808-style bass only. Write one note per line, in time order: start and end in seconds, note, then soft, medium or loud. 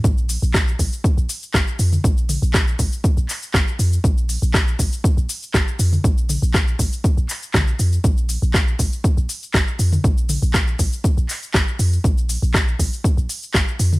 0.04 0.37 A#1 loud
0.42 0.74 A#1 medium
0.79 0.89 A#1 medium
1.17 1.26 A#1 loud
1.54 1.64 G#1 medium
1.79 1.98 F2 medium
2.04 2.37 A#1 loud
2.42 2.74 A#1 loud
2.79 2.89 A#1 medium
3.17 3.26 A#1 loud
3.54 3.64 G#1 medium
3.79 3.98 F2 medium
4.04 4.37 A#1 loud
4.42 4.74 A#1 loud
4.79 4.89 A#1 medium
5.17 5.26 A#1 loud
5.54 5.64 G#1 medium
5.79 5.98 F2 medium
6.04 6.37 A#1 loud
6.42 6.74 A#1 loud
6.79 6.89 A#1 medium
7.17 7.26 A#1 loud
7.54 7.73 A#1 loud
7.79 7.98 F2 medium
8.04 8.37 A#1 loud
8.42 8.74 A#1 loud
8.79 8.89 A#1 medium
9.17 9.26 A#1 loud
9.54 9.64 G#1 medium
9.79 9.98 F2 medium
10.04 10.37 A#1 loud
10.42 10.74 A#1 loud
10.79 10.89 A#1 medium
11.17 11.26 A#1 loud
11.54 11.64 G#1 medium
11.79 11.98 F2 medium
12.04 12.37 A#1 loud
12.42 12.74 A#1 medium
12.79 12.89 A#1 medium
13.17 13.26 A#1 loud
13.54 13.64 G#1 medium
13.79 13.98 F2 medium